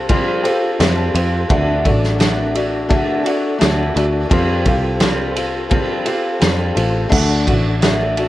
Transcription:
Already playing: C2 F4 G4 A4 C5 F5
0.09 F3 G3 C4 F4 A4, kick, ride
0.43 C4 F4 G4 A4 C5 F5, ride
0.79 F2 G3 C4 F4 A4 E5, snare, ride
0.97 A5
1.14 F2 C4 F4 A4, ride
1.48 D2 D3 A3 D4 F#4 A4 D5 F#5, kick, ride
1.84 A1 D4 F#4 A4 D5 F#5, kick, ride
2.04 snare
2.18 A3 D4 F#4 A4, snare, ride
2.54 D4 F#4 A4, ride
2.89 D3 A3 D4 F#4 A4, kick, ride
3.24 D4 F#4 A4 D5 F#5, ride
3.59 D2 A3 D4 F#4 A4, snare, ride
3.94 D2 D4 F#4 A4, ride
4.29 F2 F3 G3 C4 F4 G4 A4 C5 F5, kick, ride
4.65 C2 C4 F4 G4 A4 C5 F5, kick, ride
5.00 G3 C4 F4 A4, snare, ride
5.36 C4 F4 A4, ride
5.70 F3 G3 C4 F4 A4, kick, ride
6.05 C4 F4 G4 A4 C5 F5, ride
6.39 F2 G3 C4 F4 A4, snare, ride
6.75 A1 C4 F4 A4, ride
7.09 D2 D3 A3 D4 F#4 A4 D5, kick, crash
7.13 F#5
7.47 A1 D4 F#4 A4 D5 F#5, kick, ride
7.81 A3 D4 F#4 A4, snare, ride
8.17 D4 F#4 A4, ride

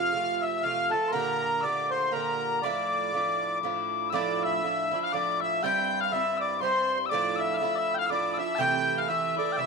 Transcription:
Already playing: C3 F3 A3 F4 F5
0.13 C3 F3 A3 F4
0.42 E5
0.63 C3 F3 A3 F4 F5
0.91 A3 F4 A4 A5
0.95 F3 A5
1.03 A5
1.08 A#4 C6
1.13 A#2 D3 G4 A#5
1.61 A#2 D3 D5 D6 E6
1.65 A3 G4
1.91 C5 C6
2.12 A#2 D3 A#4 A#5
2.16 G4
2.62 A2 F3 D4 E4 D5 D6
3.13 A2 F3 D4 E4
3.63 A2 F3 D4 E4
4.10 A2 F3 E6
4.14 D4 E4 D5 D6
4.43 E5
4.63 A2 F3 D4 E4
4.91 F3 D4 E4
5.04 F5
5.13 A2 F3 D4 E4 D5 D6
5.41 E5
5.62 G2 G3 C4 E4 G5
6.01 F5
6.12 G2 G3 C4 E4 E5
6.37 D5 D6 E6
6.61 G2 G3 C4 C5 C6
6.65 E4
7.06 D6 E6
7.11 A2 F3 D4 E4 D5
7.36 E5 E6
7.54 E5 F5
7.60 A2 F3 D4 E4
7.77 E5
7.94 G5
7.98 F5
8.06 A2 F3 D6 E6
8.11 D4 E4 D5
8.34 E4 E6
8.38 F3 D4 E5
8.55 C3 G5 A5
8.59 E3 A3 E4 G5
8.97 F5
9.07 C3 E3 A3 E4 E5
9.37 E3 A3 E4 D5
9.52 G5
9.57 C3 E3 A3 E5
9.61 E4

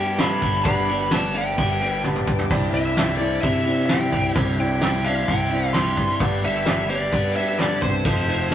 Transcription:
Already playing: G2 G3 B3 D4 G4 B4 D5 G5 D6
0.17 G2 D3 G3 B3 D4 G4 B5, snare, ride
0.42 G1, kick, ride
0.64 G1 G2 D3 G3 B3 D4 G4 B4 D5 A5 B5, kick, ride
0.88 G3 B3 D4 G4 B4 D5, ride
1.11 G2 D3 G3 B3 D4 G4 A5, snare, ride
1.34 G3 B3 D4 G4 B4 D5, ride
1.38 G5
1.57 G1 G3 B3 D4 G4, kick, ride
1.81 G3 B3 D4 G4, ride
2.03 G2 D3 G3 B3 D4 G4 B5, high tom
2.16 mid tom
2.27 G2 G5, kick
2.39 floor tom
2.50 C2 C3 G3 C4 D4 E4 C5 D5 E5 G5, kick, crash
2.72 C2 C4 D4 E4 C5 D5 E5, ride
2.97 C3 G3 C4 D4 E4, snare, ride
3.18 D4 E4 C5 D5, ride
3.22 C4
3.42 C3 G3 C4 D4 E5, kick, ride
3.46 E4
3.65 C4 D4 E4, ride
3.86 C3 G3 G5, snare, ride
3.90 C4 D4 E4
4.12 C2, kick, ride
4.35 C2 C3 G3 C4 D4 E4 C5 D5, kick, ride
4.58 C4 D4 E4 C5 D5 G5, ride
4.81 C3 G3 C4 D4 E4, snare, ride
5.04 C4 D4 E4 C5 D5 F5, ride
5.28 C2 G3 C4 D4 E4 G5, kick, ride
5.50 C4 D4 E4, ride
5.73 C3 G3 C4 D4 E4 C6, snare, ride
5.97 G2, kick, ride
6.20 G1 G2 D3 G3 B3 D4 G4 B4 D5 D6, kick, ride
6.43 G1 G3 B3 D4 G4 B4 D5 E5, ride
6.64 G2 D3 G3 B3 D4 G4, snare, ride
6.87 G3 B3 D4 G4 B4 D5, ride
6.91 D5
7.10 G2 G3 B3 D4 G4, kick, ride
7.33 G3 B3 D4 G4 E5, ride
7.57 G2 D3 G3 B3 D4 G4 D5, snare, ride
7.81 C2 C5, kick, ride
8.03 F1 F3 C4 D#4 F4 A4 D#5 F5 C6, kick, ride
8.25 C4 D#4 F4 A4 D#5, ride
8.50 F3 C4 D#4

